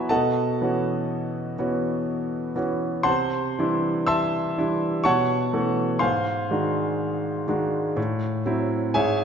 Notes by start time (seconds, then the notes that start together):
Already playing: F#3 B3 E4 F#4 B4 C#5 E5 F#5 G#5 A5 B5 C#6
0.09 B2 A4 D#5 F#5 A5
0.61 E3 B3 C#4 F#4
1.59 E3 B3 C#4 F#4
2.56 E3 B3 C#4 F#4
3.03 C3 C5 F#5 A5 C6
3.59 E3 G3 D4 E4
4.07 E5 A5 C6 E6
4.58 E3 G3 D4 E4
5.04 B2 C#5 F#5 A5 C#6
5.53 E3 A3 C#4 F#4
5.99 G#2 C5 F5 G#5 C6
6.51 D#3 G#3 D4 F#4
7.48 D#3 G#3 D4 F#4
7.97 A2
8.46 F#3 C4 E4
8.94 G#2 G#4 C#5 E5 G#5